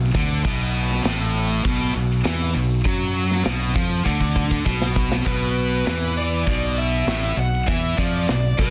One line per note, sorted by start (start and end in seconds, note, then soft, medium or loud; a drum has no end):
0.00 0.13 B1 medium
0.15 0.43 D2 medium
0.15 0.44 D3 loud
0.15 kick loud
0.15 open hi-hat medium
0.44 1.01 B1 loud
0.44 1.04 B2 loud
0.44 kick loud
0.44 crash loud
0.75 open hi-hat medium
0.90 snare soft
1.04 1.61 A1 medium
1.04 1.64 A2 loud
1.04 snare loud
1.04 open hi-hat medium
1.35 open hi-hat medium
1.64 1.93 B1 medium
1.64 1.94 B2 loud
1.64 kick loud
1.64 open hi-hat medium
1.95 2.23 B1 medium
1.95 2.19 B2 medium
1.95 open hi-hat medium
2.25 2.53 E2 loud
2.25 2.54 E3 loud
2.25 snare loud
2.25 open hi-hat medium
2.55 2.84 B1 medium
2.55 2.79 B2 medium
2.55 open hi-hat medium
2.85 3.42 F#2 loud
2.85 3.44 F#3 loud
2.85 kick loud
2.85 open hi-hat medium
3.16 open hi-hat medium
3.31 snare soft
3.44 3.74 B1 medium
3.44 3.74 B2 loud
3.44 snare loud
3.44 open hi-hat medium
3.75 4.04 F2 medium
3.75 4.04 F3 loud
3.75 kick loud
3.75 open hi-hat medium
4.05 4.62 D2 medium
4.05 4.64 D3 loud
4.05 kick medium
4.21 kick medium
4.36 kick medium
4.51 kick medium
4.65 5.22 B1 medium
4.65 5.24 B2 medium
4.65 kick medium
4.82 snare medium
4.96 kick loud
5.12 snare medium
5.26 5.82 B1 medium
5.26 5.85 B2 medium
5.26 6.13 B4 medium
5.26 kick medium
5.26 open hi-hat soft
5.86 6.43 E2 medium
5.86 6.46 E3 medium
5.86 snare loud
5.86 open hi-hat soft
6.18 6.48 D5 medium
6.47 7.03 B1 medium
6.47 7.06 B2 medium
6.47 6.76 D5 medium
6.47 kick medium
6.47 open hi-hat soft
6.78 7.39 E5 medium
7.07 7.35 A1 medium
7.07 7.36 A2 medium
7.07 snare loud
7.07 open hi-hat medium
7.37 7.65 B1 medium
7.37 7.61 B2 medium
7.37 7.66 F#5 medium
7.67 7.96 E2 medium
7.67 7.96 E3 medium
7.67 7.96 E5 medium
7.67 kick medium
7.67 open hi-hat soft
7.97 8.26 F2 medium
7.97 8.27 F3 medium
7.97 8.58 D5 medium
7.97 kick medium
8.28 8.56 B1 medium
8.28 8.52 B2 medium
8.28 snare loud
8.28 open hi-hat soft
8.58 8.70 B1 medium
8.58 8.70 B2 loud
8.58 8.70 B4 medium
8.58 kick medium